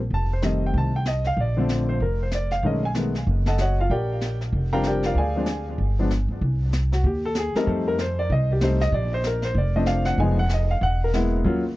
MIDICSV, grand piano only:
0, 0, Header, 1, 2, 480
1, 0, Start_track
1, 0, Key_signature, -2, "major"
1, 0, Tempo, 314795
1, 166, Time_signature, 4, 2, 24, 8
1, 17936, End_track
2, 0, Start_track
2, 0, Title_t, "Grand piano"
2, 0, Program_c, 0, 0
2, 214, Note_on_c, 0, 81, 80
2, 476, Note_off_c, 0, 81, 0
2, 508, Note_on_c, 0, 72, 61
2, 647, Note_on_c, 0, 51, 48
2, 647, Note_on_c, 0, 55, 48
2, 658, Note_on_c, 0, 57, 44
2, 662, Note_on_c, 0, 60, 58
2, 666, Note_off_c, 0, 72, 0
2, 681, Note_on_c, 0, 75, 63
2, 950, Note_off_c, 0, 75, 0
2, 1013, Note_on_c, 0, 79, 65
2, 1159, Note_off_c, 0, 79, 0
2, 1185, Note_on_c, 0, 81, 74
2, 1363, Note_off_c, 0, 51, 0
2, 1363, Note_off_c, 0, 55, 0
2, 1368, Note_off_c, 0, 57, 0
2, 1370, Note_off_c, 0, 60, 0
2, 1442, Note_off_c, 0, 81, 0
2, 1465, Note_on_c, 0, 79, 74
2, 1625, Note_off_c, 0, 79, 0
2, 1641, Note_on_c, 0, 75, 75
2, 1910, Note_off_c, 0, 75, 0
2, 1935, Note_on_c, 0, 77, 87
2, 2100, Note_off_c, 0, 77, 0
2, 2142, Note_on_c, 0, 74, 70
2, 2391, Note_on_c, 0, 50, 65
2, 2392, Note_on_c, 0, 53, 58
2, 2410, Note_on_c, 0, 60, 68
2, 2411, Note_on_c, 0, 57, 55
2, 2838, Note_off_c, 0, 74, 0
2, 2882, Note_on_c, 0, 72, 71
2, 3017, Note_off_c, 0, 50, 0
2, 3018, Note_off_c, 0, 53, 0
2, 3027, Note_off_c, 0, 60, 0
2, 3028, Note_off_c, 0, 57, 0
2, 3054, Note_off_c, 0, 72, 0
2, 3085, Note_on_c, 0, 70, 61
2, 3353, Note_off_c, 0, 70, 0
2, 3396, Note_on_c, 0, 72, 60
2, 3552, Note_off_c, 0, 72, 0
2, 3574, Note_on_c, 0, 74, 69
2, 3837, Note_on_c, 0, 77, 88
2, 3839, Note_off_c, 0, 74, 0
2, 4013, Note_off_c, 0, 77, 0
2, 4023, Note_on_c, 0, 51, 59
2, 4032, Note_on_c, 0, 56, 55
2, 4034, Note_on_c, 0, 57, 51
2, 4039, Note_on_c, 0, 61, 65
2, 4058, Note_on_c, 0, 75, 68
2, 4283, Note_off_c, 0, 51, 0
2, 4287, Note_off_c, 0, 56, 0
2, 4288, Note_off_c, 0, 57, 0
2, 4290, Note_off_c, 0, 61, 0
2, 4321, Note_off_c, 0, 75, 0
2, 4351, Note_on_c, 0, 80, 88
2, 4450, Note_off_c, 0, 80, 0
2, 4509, Note_on_c, 0, 51, 46
2, 4511, Note_on_c, 0, 57, 45
2, 4515, Note_on_c, 0, 56, 46
2, 4530, Note_on_c, 0, 59, 54
2, 4766, Note_off_c, 0, 51, 0
2, 4767, Note_off_c, 0, 57, 0
2, 4769, Note_off_c, 0, 56, 0
2, 4776, Note_off_c, 0, 59, 0
2, 5295, Note_on_c, 0, 81, 73
2, 5305, Note_on_c, 0, 69, 59
2, 5305, Note_on_c, 0, 75, 64
2, 5305, Note_on_c, 0, 78, 55
2, 5463, Note_off_c, 0, 81, 0
2, 5468, Note_off_c, 0, 69, 0
2, 5468, Note_off_c, 0, 75, 0
2, 5468, Note_off_c, 0, 78, 0
2, 5501, Note_on_c, 0, 78, 72
2, 5503, Note_on_c, 0, 66, 53
2, 5505, Note_on_c, 0, 73, 54
2, 5516, Note_on_c, 0, 75, 56
2, 5763, Note_off_c, 0, 78, 0
2, 5765, Note_off_c, 0, 66, 0
2, 5766, Note_off_c, 0, 73, 0
2, 5771, Note_off_c, 0, 75, 0
2, 5801, Note_on_c, 0, 65, 59
2, 5805, Note_on_c, 0, 77, 73
2, 5957, Note_off_c, 0, 65, 0
2, 5959, Note_off_c, 0, 77, 0
2, 5960, Note_on_c, 0, 74, 56
2, 5960, Note_on_c, 0, 79, 76
2, 5967, Note_on_c, 0, 67, 60
2, 5970, Note_on_c, 0, 70, 53
2, 6669, Note_off_c, 0, 74, 0
2, 6669, Note_off_c, 0, 79, 0
2, 6673, Note_off_c, 0, 67, 0
2, 6675, Note_off_c, 0, 70, 0
2, 7209, Note_on_c, 0, 77, 73
2, 7209, Note_on_c, 0, 82, 82
2, 7215, Note_on_c, 0, 53, 62
2, 7216, Note_on_c, 0, 79, 75
2, 7217, Note_on_c, 0, 60, 59
2, 7217, Note_on_c, 0, 70, 68
2, 7223, Note_on_c, 0, 55, 62
2, 7230, Note_on_c, 0, 62, 76
2, 7381, Note_off_c, 0, 77, 0
2, 7381, Note_off_c, 0, 82, 0
2, 7385, Note_off_c, 0, 79, 0
2, 7386, Note_off_c, 0, 70, 0
2, 7421, Note_on_c, 0, 79, 74
2, 7429, Note_on_c, 0, 70, 62
2, 7434, Note_on_c, 0, 67, 56
2, 7439, Note_on_c, 0, 74, 60
2, 7685, Note_off_c, 0, 79, 0
2, 7688, Note_off_c, 0, 70, 0
2, 7691, Note_off_c, 0, 67, 0
2, 7694, Note_off_c, 0, 74, 0
2, 7710, Note_on_c, 0, 70, 59
2, 7714, Note_on_c, 0, 77, 84
2, 7717, Note_on_c, 0, 65, 61
2, 7720, Note_on_c, 0, 74, 66
2, 7832, Note_off_c, 0, 53, 0
2, 7834, Note_off_c, 0, 60, 0
2, 7837, Note_off_c, 0, 55, 0
2, 7840, Note_off_c, 0, 62, 0
2, 7873, Note_off_c, 0, 70, 0
2, 7874, Note_off_c, 0, 77, 0
2, 7876, Note_off_c, 0, 65, 0
2, 7878, Note_off_c, 0, 74, 0
2, 7897, Note_on_c, 0, 80, 80
2, 7907, Note_on_c, 0, 74, 55
2, 7913, Note_on_c, 0, 68, 53
2, 7919, Note_on_c, 0, 77, 57
2, 8170, Note_on_c, 0, 53, 59
2, 8183, Note_on_c, 0, 56, 53
2, 8190, Note_on_c, 0, 60, 52
2, 8191, Note_on_c, 0, 62, 60
2, 8329, Note_off_c, 0, 53, 0
2, 8335, Note_off_c, 0, 56, 0
2, 8339, Note_off_c, 0, 60, 0
2, 8339, Note_off_c, 0, 62, 0
2, 8599, Note_off_c, 0, 80, 0
2, 8604, Note_off_c, 0, 74, 0
2, 8607, Note_off_c, 0, 68, 0
2, 8610, Note_off_c, 0, 77, 0
2, 9136, Note_on_c, 0, 53, 55
2, 9145, Note_on_c, 0, 56, 53
2, 9151, Note_on_c, 0, 62, 63
2, 9154, Note_on_c, 0, 59, 58
2, 9292, Note_off_c, 0, 53, 0
2, 9296, Note_off_c, 0, 56, 0
2, 9299, Note_off_c, 0, 62, 0
2, 9301, Note_off_c, 0, 59, 0
2, 10567, Note_on_c, 0, 66, 67
2, 10741, Note_off_c, 0, 66, 0
2, 10774, Note_on_c, 0, 67, 61
2, 11041, Note_off_c, 0, 67, 0
2, 11062, Note_on_c, 0, 69, 87
2, 11228, Note_off_c, 0, 69, 0
2, 11246, Note_on_c, 0, 68, 80
2, 11517, Note_off_c, 0, 68, 0
2, 11524, Note_on_c, 0, 55, 67
2, 11530, Note_on_c, 0, 57, 64
2, 11533, Note_on_c, 0, 70, 87
2, 11542, Note_on_c, 0, 60, 64
2, 11547, Note_on_c, 0, 63, 74
2, 11698, Note_on_c, 0, 69, 72
2, 11703, Note_off_c, 0, 70, 0
2, 11982, Note_off_c, 0, 69, 0
2, 12013, Note_on_c, 0, 70, 84
2, 12146, Note_off_c, 0, 55, 0
2, 12149, Note_off_c, 0, 57, 0
2, 12155, Note_off_c, 0, 60, 0
2, 12158, Note_off_c, 0, 63, 0
2, 12183, Note_off_c, 0, 70, 0
2, 12209, Note_on_c, 0, 72, 76
2, 12478, Note_off_c, 0, 72, 0
2, 12488, Note_on_c, 0, 74, 85
2, 12660, Note_off_c, 0, 74, 0
2, 12691, Note_on_c, 0, 75, 80
2, 12959, Note_off_c, 0, 75, 0
2, 13000, Note_on_c, 0, 67, 61
2, 13146, Note_on_c, 0, 55, 61
2, 13156, Note_off_c, 0, 67, 0
2, 13161, Note_on_c, 0, 57, 57
2, 13164, Note_on_c, 0, 63, 65
2, 13164, Note_on_c, 0, 72, 71
2, 13171, Note_on_c, 0, 60, 57
2, 13405, Note_off_c, 0, 55, 0
2, 13412, Note_off_c, 0, 57, 0
2, 13414, Note_off_c, 0, 63, 0
2, 13417, Note_off_c, 0, 60, 0
2, 13435, Note_off_c, 0, 72, 0
2, 13442, Note_on_c, 0, 75, 103
2, 13616, Note_off_c, 0, 75, 0
2, 13633, Note_on_c, 0, 74, 81
2, 13908, Note_off_c, 0, 74, 0
2, 13938, Note_on_c, 0, 72, 88
2, 14104, Note_off_c, 0, 72, 0
2, 14132, Note_on_c, 0, 70, 71
2, 14398, Note_off_c, 0, 70, 0
2, 14402, Note_on_c, 0, 72, 78
2, 14576, Note_off_c, 0, 72, 0
2, 14603, Note_on_c, 0, 74, 65
2, 14873, Note_off_c, 0, 74, 0
2, 14879, Note_on_c, 0, 53, 62
2, 14880, Note_on_c, 0, 75, 73
2, 14882, Note_on_c, 0, 57, 58
2, 14888, Note_on_c, 0, 60, 57
2, 14893, Note_on_c, 0, 62, 69
2, 15044, Note_on_c, 0, 77, 90
2, 15055, Note_off_c, 0, 75, 0
2, 15333, Note_off_c, 0, 77, 0
2, 15335, Note_on_c, 0, 78, 91
2, 15501, Note_off_c, 0, 53, 0
2, 15503, Note_off_c, 0, 57, 0
2, 15506, Note_off_c, 0, 60, 0
2, 15508, Note_off_c, 0, 62, 0
2, 15521, Note_off_c, 0, 78, 0
2, 15540, Note_on_c, 0, 53, 65
2, 15550, Note_on_c, 0, 56, 65
2, 15551, Note_on_c, 0, 80, 84
2, 15555, Note_on_c, 0, 59, 59
2, 15559, Note_on_c, 0, 63, 69
2, 15800, Note_off_c, 0, 53, 0
2, 15805, Note_off_c, 0, 56, 0
2, 15807, Note_off_c, 0, 59, 0
2, 15809, Note_off_c, 0, 63, 0
2, 15826, Note_off_c, 0, 80, 0
2, 15846, Note_on_c, 0, 78, 92
2, 16016, Note_off_c, 0, 78, 0
2, 16066, Note_on_c, 0, 75, 70
2, 16324, Note_off_c, 0, 75, 0
2, 16325, Note_on_c, 0, 77, 78
2, 16496, Note_off_c, 0, 77, 0
2, 16511, Note_on_c, 0, 78, 92
2, 16785, Note_off_c, 0, 78, 0
2, 16836, Note_on_c, 0, 70, 73
2, 16932, Note_off_c, 0, 70, 0
2, 16987, Note_on_c, 0, 58, 50
2, 16990, Note_on_c, 0, 56, 62
2, 16996, Note_on_c, 0, 59, 54
2, 16997, Note_on_c, 0, 64, 68
2, 17434, Note_off_c, 0, 58, 0
2, 17450, Note_on_c, 0, 54, 70
2, 17457, Note_on_c, 0, 58, 56
2, 17459, Note_off_c, 0, 56, 0
2, 17462, Note_off_c, 0, 59, 0
2, 17462, Note_off_c, 0, 64, 0
2, 17467, Note_on_c, 0, 61, 61
2, 17468, Note_on_c, 0, 65, 75
2, 17713, Note_off_c, 0, 54, 0
2, 17716, Note_off_c, 0, 58, 0
2, 17721, Note_off_c, 0, 61, 0
2, 17722, Note_off_c, 0, 65, 0
2, 17936, End_track
0, 0, End_of_file